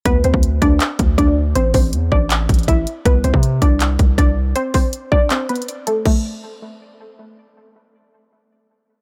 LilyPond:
<<
  \new Staff \with { instrumentName = "Synth pluck" } { \time 4/4 \key a \minor \tempo 4 = 160 <b b'>8 <c' c''>4 <d' d''>4. <d' d''>8 r8 | <c' c''>8 <c' c''>4 <d' d''>4. <e' e''>8 r8 | <b b'>8 <c' c''>4 <d' d''>4. <d' d''>8 r8 | <c' c''>8 <c' c''>4 <d' d''>8 <c' c''>8 <b b'>4 <a a'>8 |
a2. r4 | r1 | }
  \new Staff \with { instrumentName = "808-style bass" } { \clef bass \time 4/4 \key a \minor d,8 d,16 d,8. d,8 r8 d,8 d,4 | a,,8 a,,8 e,8 a,,4 a,,8 a,,8 r8 | c,8 c,16 c8. c,4 c,8 c,4 | r1 |
r1 | r1 | }
  \new DrumStaff \with { instrumentName = "Drums" } \drummode { \time 4/4 <hh bd>8 hh16 bd16 hh8 <hh bd>8 <hc hh>8 <hh bd>8 <hh bd>4 | hh8 <hho bd>8 hh8 bd8 <hc hh>8 <hh bd>32 hh32 hh32 hh32 <hh bd>8 hh8 | <hh bd>8 hh16 bd16 hh8 <hh bd>8 <hc hh>8 <hh bd>8 <hh bd>4 | hh8 <hho bd>8 hh8 bd8 \tuplet 3/2 { <hc hh>16 r16 r16 hh16 hh16 hh16 } hh8 hh8 |
<cymc bd>4 r4 r4 r4 | r4 r4 r4 r4 | }
>>